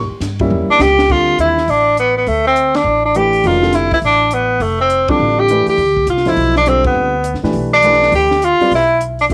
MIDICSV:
0, 0, Header, 1, 6, 480
1, 0, Start_track
1, 0, Tempo, 292683
1, 1804, Time_signature, 4, 2, 24, 8
1, 15314, End_track
2, 0, Start_track
2, 0, Title_t, "Tenor saxophone"
2, 0, Program_c, 0, 66
2, 1164, Note_on_c, 0, 62, 108
2, 1349, Note_on_c, 0, 67, 110
2, 1373, Note_off_c, 0, 62, 0
2, 1829, Note_on_c, 0, 65, 96
2, 1854, Note_off_c, 0, 67, 0
2, 2296, Note_off_c, 0, 65, 0
2, 2306, Note_on_c, 0, 64, 96
2, 2789, Note_on_c, 0, 62, 94
2, 2814, Note_off_c, 0, 64, 0
2, 3256, Note_off_c, 0, 62, 0
2, 3273, Note_on_c, 0, 59, 89
2, 3539, Note_off_c, 0, 59, 0
2, 3564, Note_on_c, 0, 59, 73
2, 3744, Note_on_c, 0, 57, 86
2, 3769, Note_off_c, 0, 59, 0
2, 4035, Note_off_c, 0, 57, 0
2, 4055, Note_on_c, 0, 60, 87
2, 4535, Note_on_c, 0, 62, 96
2, 4559, Note_off_c, 0, 60, 0
2, 4999, Note_off_c, 0, 62, 0
2, 5013, Note_on_c, 0, 62, 91
2, 5193, Note_on_c, 0, 67, 97
2, 5217, Note_off_c, 0, 62, 0
2, 5688, Note_on_c, 0, 65, 92
2, 5712, Note_off_c, 0, 67, 0
2, 6149, Note_on_c, 0, 64, 94
2, 6174, Note_off_c, 0, 65, 0
2, 6437, Note_off_c, 0, 64, 0
2, 6456, Note_on_c, 0, 64, 88
2, 6529, Note_off_c, 0, 64, 0
2, 6647, Note_on_c, 0, 62, 101
2, 7114, Note_on_c, 0, 59, 85
2, 7138, Note_off_c, 0, 62, 0
2, 7583, Note_on_c, 0, 57, 81
2, 7608, Note_off_c, 0, 59, 0
2, 7874, Note_off_c, 0, 57, 0
2, 7883, Note_on_c, 0, 60, 85
2, 8365, Note_on_c, 0, 62, 87
2, 8390, Note_off_c, 0, 60, 0
2, 8852, Note_on_c, 0, 67, 96
2, 8876, Note_off_c, 0, 62, 0
2, 9317, Note_off_c, 0, 67, 0
2, 9333, Note_on_c, 0, 67, 83
2, 9932, Note_off_c, 0, 67, 0
2, 10002, Note_on_c, 0, 65, 83
2, 10311, Note_on_c, 0, 64, 93
2, 10336, Note_off_c, 0, 65, 0
2, 10767, Note_off_c, 0, 64, 0
2, 10786, Note_on_c, 0, 62, 89
2, 10969, Note_on_c, 0, 60, 83
2, 10994, Note_off_c, 0, 62, 0
2, 11247, Note_off_c, 0, 60, 0
2, 11266, Note_on_c, 0, 59, 67
2, 12168, Note_off_c, 0, 59, 0
2, 12681, Note_on_c, 0, 62, 106
2, 13286, Note_off_c, 0, 62, 0
2, 13369, Note_on_c, 0, 67, 101
2, 13847, Note_on_c, 0, 65, 94
2, 13872, Note_off_c, 0, 67, 0
2, 14306, Note_off_c, 0, 65, 0
2, 14352, Note_on_c, 0, 64, 103
2, 14767, Note_off_c, 0, 64, 0
2, 15098, Note_on_c, 0, 62, 78
2, 15171, Note_off_c, 0, 62, 0
2, 15314, End_track
3, 0, Start_track
3, 0, Title_t, "Grand piano"
3, 0, Program_c, 1, 0
3, 669, Note_on_c, 1, 55, 71
3, 670, Note_on_c, 1, 58, 64
3, 673, Note_on_c, 1, 61, 62
3, 673, Note_on_c, 1, 64, 80
3, 1290, Note_off_c, 1, 55, 0
3, 1290, Note_off_c, 1, 58, 0
3, 1292, Note_off_c, 1, 61, 0
3, 1292, Note_off_c, 1, 64, 0
3, 1797, Note_on_c, 1, 55, 49
3, 1801, Note_on_c, 1, 50, 57
3, 1801, Note_on_c, 1, 60, 45
3, 1806, Note_on_c, 1, 65, 47
3, 1809, Note_on_c, 1, 69, 59
3, 2521, Note_off_c, 1, 55, 0
3, 2522, Note_off_c, 1, 50, 0
3, 2522, Note_off_c, 1, 60, 0
3, 2525, Note_off_c, 1, 65, 0
3, 2526, Note_off_c, 1, 69, 0
3, 5168, Note_on_c, 1, 52, 56
3, 5173, Note_on_c, 1, 57, 48
3, 5175, Note_on_c, 1, 62, 48
3, 5176, Note_on_c, 1, 71, 61
3, 5177, Note_on_c, 1, 67, 49
3, 5661, Note_on_c, 1, 56, 53
3, 5661, Note_on_c, 1, 66, 53
3, 5662, Note_on_c, 1, 51, 58
3, 5665, Note_on_c, 1, 61, 54
3, 5666, Note_on_c, 1, 70, 64
3, 5887, Note_off_c, 1, 52, 0
3, 5889, Note_off_c, 1, 57, 0
3, 5890, Note_off_c, 1, 62, 0
3, 5890, Note_off_c, 1, 71, 0
3, 5891, Note_off_c, 1, 67, 0
3, 5923, Note_off_c, 1, 56, 0
3, 5923, Note_off_c, 1, 66, 0
3, 5924, Note_off_c, 1, 51, 0
3, 5925, Note_off_c, 1, 61, 0
3, 5925, Note_off_c, 1, 70, 0
3, 5951, Note_on_c, 1, 55, 58
3, 5952, Note_on_c, 1, 60, 58
3, 5954, Note_on_c, 1, 50, 64
3, 5955, Note_on_c, 1, 65, 56
3, 5956, Note_on_c, 1, 69, 69
3, 6367, Note_off_c, 1, 55, 0
3, 6367, Note_off_c, 1, 60, 0
3, 6368, Note_off_c, 1, 50, 0
3, 6369, Note_off_c, 1, 65, 0
3, 6370, Note_off_c, 1, 69, 0
3, 8354, Note_on_c, 1, 55, 58
3, 8355, Note_on_c, 1, 50, 63
3, 8362, Note_on_c, 1, 60, 60
3, 8364, Note_on_c, 1, 65, 61
3, 8364, Note_on_c, 1, 69, 67
3, 8971, Note_off_c, 1, 55, 0
3, 8972, Note_off_c, 1, 50, 0
3, 8975, Note_off_c, 1, 60, 0
3, 8977, Note_off_c, 1, 65, 0
3, 8977, Note_off_c, 1, 69, 0
3, 9023, Note_on_c, 1, 62, 57
3, 9024, Note_on_c, 1, 52, 58
3, 9025, Note_on_c, 1, 67, 51
3, 9027, Note_on_c, 1, 57, 54
3, 9031, Note_on_c, 1, 71, 68
3, 9493, Note_off_c, 1, 52, 0
3, 9493, Note_off_c, 1, 62, 0
3, 9493, Note_off_c, 1, 67, 0
3, 9494, Note_off_c, 1, 57, 0
3, 9497, Note_off_c, 1, 71, 0
3, 10262, Note_on_c, 1, 47, 59
3, 10267, Note_on_c, 1, 53, 59
3, 10268, Note_on_c, 1, 69, 55
3, 10270, Note_on_c, 1, 64, 59
3, 10275, Note_on_c, 1, 72, 68
3, 10885, Note_off_c, 1, 47, 0
3, 10888, Note_off_c, 1, 53, 0
3, 10888, Note_off_c, 1, 69, 0
3, 10890, Note_off_c, 1, 64, 0
3, 10892, Note_off_c, 1, 72, 0
3, 10932, Note_on_c, 1, 60, 49
3, 10933, Note_on_c, 1, 65, 50
3, 10934, Note_on_c, 1, 50, 52
3, 10935, Note_on_c, 1, 55, 49
3, 10935, Note_on_c, 1, 69, 58
3, 11648, Note_off_c, 1, 60, 0
3, 11648, Note_off_c, 1, 65, 0
3, 11649, Note_off_c, 1, 50, 0
3, 11649, Note_off_c, 1, 69, 0
3, 11650, Note_off_c, 1, 55, 0
3, 12192, Note_on_c, 1, 57, 60
3, 12195, Note_on_c, 1, 52, 65
3, 12198, Note_on_c, 1, 62, 64
3, 12201, Note_on_c, 1, 67, 63
3, 12205, Note_on_c, 1, 71, 72
3, 12811, Note_off_c, 1, 57, 0
3, 12812, Note_off_c, 1, 52, 0
3, 12814, Note_off_c, 1, 62, 0
3, 12815, Note_off_c, 1, 67, 0
3, 12817, Note_off_c, 1, 71, 0
3, 12854, Note_on_c, 1, 52, 68
3, 12856, Note_on_c, 1, 57, 62
3, 12862, Note_on_c, 1, 62, 58
3, 12866, Note_on_c, 1, 67, 58
3, 12867, Note_on_c, 1, 71, 75
3, 13570, Note_off_c, 1, 52, 0
3, 13571, Note_off_c, 1, 57, 0
3, 13574, Note_off_c, 1, 62, 0
3, 13576, Note_off_c, 1, 67, 0
3, 13576, Note_off_c, 1, 71, 0
3, 14120, Note_on_c, 1, 55, 71
3, 14120, Note_on_c, 1, 60, 64
3, 14124, Note_on_c, 1, 71, 68
3, 14126, Note_on_c, 1, 65, 62
3, 14127, Note_on_c, 1, 74, 79
3, 14273, Note_off_c, 1, 55, 0
3, 14273, Note_off_c, 1, 60, 0
3, 14275, Note_off_c, 1, 71, 0
3, 14276, Note_off_c, 1, 65, 0
3, 14277, Note_off_c, 1, 74, 0
3, 15314, End_track
4, 0, Start_track
4, 0, Title_t, "Upright bass"
4, 0, Program_c, 2, 32
4, 337, Note_on_c, 2, 43, 92
4, 816, Note_off_c, 2, 43, 0
4, 823, Note_on_c, 2, 40, 86
4, 1113, Note_off_c, 2, 40, 0
4, 1299, Note_on_c, 2, 37, 94
4, 1776, Note_off_c, 2, 37, 0
4, 1796, Note_on_c, 2, 38, 80
4, 2245, Note_off_c, 2, 38, 0
4, 2268, Note_on_c, 2, 39, 72
4, 2721, Note_off_c, 2, 39, 0
4, 2753, Note_on_c, 2, 33, 74
4, 3669, Note_off_c, 2, 33, 0
4, 3721, Note_on_c, 2, 38, 83
4, 4634, Note_off_c, 2, 38, 0
4, 4659, Note_on_c, 2, 33, 81
4, 5582, Note_off_c, 2, 33, 0
4, 5640, Note_on_c, 2, 29, 87
4, 6368, Note_off_c, 2, 29, 0
4, 6412, Note_on_c, 2, 37, 65
4, 6584, Note_off_c, 2, 37, 0
4, 6590, Note_on_c, 2, 33, 77
4, 7508, Note_off_c, 2, 33, 0
4, 7544, Note_on_c, 2, 29, 83
4, 8279, Note_off_c, 2, 29, 0
4, 8340, Note_on_c, 2, 39, 68
4, 8508, Note_off_c, 2, 39, 0
4, 8519, Note_on_c, 2, 33, 85
4, 9247, Note_off_c, 2, 33, 0
4, 9467, Note_on_c, 2, 38, 84
4, 9920, Note_off_c, 2, 38, 0
4, 9950, Note_on_c, 2, 36, 76
4, 10402, Note_off_c, 2, 36, 0
4, 10439, Note_on_c, 2, 35, 84
4, 11167, Note_off_c, 2, 35, 0
4, 11225, Note_on_c, 2, 39, 65
4, 11384, Note_off_c, 2, 39, 0
4, 11394, Note_on_c, 2, 38, 81
4, 11993, Note_off_c, 2, 38, 0
4, 12037, Note_on_c, 2, 43, 57
4, 12181, Note_off_c, 2, 43, 0
4, 12191, Note_on_c, 2, 45, 63
4, 12345, Note_off_c, 2, 45, 0
4, 12361, Note_on_c, 2, 35, 85
4, 13274, Note_off_c, 2, 35, 0
4, 13317, Note_on_c, 2, 38, 89
4, 14047, Note_off_c, 2, 38, 0
4, 14284, Note_on_c, 2, 35, 76
4, 15197, Note_off_c, 2, 35, 0
4, 15245, Note_on_c, 2, 38, 89
4, 15314, Note_off_c, 2, 38, 0
4, 15314, End_track
5, 0, Start_track
5, 0, Title_t, "Muted upright bass strokes"
5, 165, Note_on_c, 9, 29, 42
5, 329, Note_off_c, 9, 29, 0
5, 1127, Note_on_c, 9, 29, 47
5, 1291, Note_off_c, 9, 29, 0
5, 9296, Note_on_c, 9, 29, 36
5, 9460, Note_off_c, 9, 29, 0
5, 14098, Note_on_c, 9, 29, 39
5, 14262, Note_off_c, 9, 29, 0
5, 15314, End_track
6, 0, Start_track
6, 0, Title_t, "Drums"
6, 354, Note_on_c, 9, 44, 64
6, 354, Note_on_c, 9, 51, 79
6, 362, Note_on_c, 9, 38, 40
6, 518, Note_off_c, 9, 44, 0
6, 518, Note_off_c, 9, 51, 0
6, 526, Note_off_c, 9, 38, 0
6, 648, Note_on_c, 9, 51, 51
6, 659, Note_on_c, 9, 36, 57
6, 812, Note_off_c, 9, 51, 0
6, 823, Note_off_c, 9, 36, 0
6, 836, Note_on_c, 9, 47, 56
6, 1000, Note_off_c, 9, 47, 0
6, 1313, Note_on_c, 9, 44, 69
6, 1321, Note_on_c, 9, 38, 83
6, 1477, Note_off_c, 9, 44, 0
6, 1485, Note_off_c, 9, 38, 0
6, 1619, Note_on_c, 9, 38, 82
6, 1783, Note_off_c, 9, 38, 0
6, 1796, Note_on_c, 9, 49, 71
6, 1799, Note_on_c, 9, 36, 68
6, 1960, Note_off_c, 9, 49, 0
6, 1963, Note_off_c, 9, 36, 0
6, 2272, Note_on_c, 9, 42, 52
6, 2436, Note_off_c, 9, 42, 0
6, 2583, Note_on_c, 9, 38, 33
6, 2747, Note_off_c, 9, 38, 0
6, 2752, Note_on_c, 9, 46, 46
6, 2916, Note_off_c, 9, 46, 0
6, 3233, Note_on_c, 9, 42, 53
6, 3397, Note_off_c, 9, 42, 0
6, 3716, Note_on_c, 9, 46, 45
6, 3880, Note_off_c, 9, 46, 0
6, 4198, Note_on_c, 9, 42, 56
6, 4362, Note_off_c, 9, 42, 0
6, 4503, Note_on_c, 9, 51, 58
6, 4511, Note_on_c, 9, 38, 70
6, 4667, Note_off_c, 9, 51, 0
6, 4675, Note_off_c, 9, 38, 0
6, 5158, Note_on_c, 9, 42, 53
6, 5322, Note_off_c, 9, 42, 0
6, 5461, Note_on_c, 9, 46, 34
6, 5625, Note_off_c, 9, 46, 0
6, 5633, Note_on_c, 9, 46, 41
6, 5797, Note_off_c, 9, 46, 0
6, 5943, Note_on_c, 9, 38, 41
6, 6107, Note_off_c, 9, 38, 0
6, 6110, Note_on_c, 9, 42, 54
6, 6119, Note_on_c, 9, 38, 36
6, 6274, Note_off_c, 9, 42, 0
6, 6283, Note_off_c, 9, 38, 0
6, 6415, Note_on_c, 9, 46, 36
6, 6422, Note_on_c, 9, 36, 50
6, 6579, Note_off_c, 9, 46, 0
6, 6586, Note_off_c, 9, 36, 0
6, 6589, Note_on_c, 9, 46, 45
6, 6753, Note_off_c, 9, 46, 0
6, 7063, Note_on_c, 9, 42, 53
6, 7227, Note_off_c, 9, 42, 0
6, 7548, Note_on_c, 9, 46, 45
6, 7712, Note_off_c, 9, 46, 0
6, 8031, Note_on_c, 9, 42, 52
6, 8195, Note_off_c, 9, 42, 0
6, 8335, Note_on_c, 9, 51, 66
6, 8342, Note_on_c, 9, 36, 73
6, 8499, Note_off_c, 9, 51, 0
6, 8506, Note_off_c, 9, 36, 0
6, 8994, Note_on_c, 9, 42, 52
6, 9158, Note_off_c, 9, 42, 0
6, 9292, Note_on_c, 9, 46, 37
6, 9456, Note_off_c, 9, 46, 0
6, 9478, Note_on_c, 9, 46, 45
6, 9642, Note_off_c, 9, 46, 0
6, 9785, Note_on_c, 9, 36, 53
6, 9949, Note_off_c, 9, 36, 0
6, 9953, Note_on_c, 9, 42, 57
6, 10117, Note_off_c, 9, 42, 0
6, 10124, Note_on_c, 9, 38, 28
6, 10257, Note_on_c, 9, 46, 36
6, 10286, Note_off_c, 9, 38, 0
6, 10286, Note_on_c, 9, 38, 38
6, 10421, Note_off_c, 9, 46, 0
6, 10440, Note_on_c, 9, 46, 44
6, 10450, Note_off_c, 9, 38, 0
6, 10604, Note_off_c, 9, 46, 0
6, 10752, Note_on_c, 9, 38, 41
6, 10916, Note_off_c, 9, 38, 0
6, 10920, Note_on_c, 9, 42, 51
6, 11084, Note_off_c, 9, 42, 0
6, 11226, Note_on_c, 9, 51, 67
6, 11228, Note_on_c, 9, 36, 78
6, 11390, Note_off_c, 9, 51, 0
6, 11392, Note_off_c, 9, 36, 0
6, 11874, Note_on_c, 9, 42, 59
6, 12038, Note_off_c, 9, 42, 0
6, 12049, Note_on_c, 9, 38, 28
6, 12203, Note_off_c, 9, 38, 0
6, 12203, Note_on_c, 9, 38, 39
6, 12350, Note_on_c, 9, 46, 45
6, 12367, Note_off_c, 9, 38, 0
6, 12514, Note_off_c, 9, 46, 0
6, 12832, Note_on_c, 9, 42, 51
6, 12996, Note_off_c, 9, 42, 0
6, 13001, Note_on_c, 9, 38, 27
6, 13162, Note_off_c, 9, 38, 0
6, 13162, Note_on_c, 9, 38, 42
6, 13316, Note_on_c, 9, 46, 43
6, 13326, Note_off_c, 9, 38, 0
6, 13480, Note_off_c, 9, 46, 0
6, 13629, Note_on_c, 9, 38, 53
6, 13793, Note_off_c, 9, 38, 0
6, 13808, Note_on_c, 9, 42, 56
6, 13972, Note_off_c, 9, 42, 0
6, 14112, Note_on_c, 9, 46, 35
6, 14276, Note_off_c, 9, 46, 0
6, 14292, Note_on_c, 9, 46, 46
6, 14456, Note_off_c, 9, 46, 0
6, 14770, Note_on_c, 9, 42, 51
6, 14934, Note_off_c, 9, 42, 0
6, 15071, Note_on_c, 9, 46, 38
6, 15235, Note_off_c, 9, 46, 0
6, 15251, Note_on_c, 9, 46, 49
6, 15314, Note_off_c, 9, 46, 0
6, 15314, End_track
0, 0, End_of_file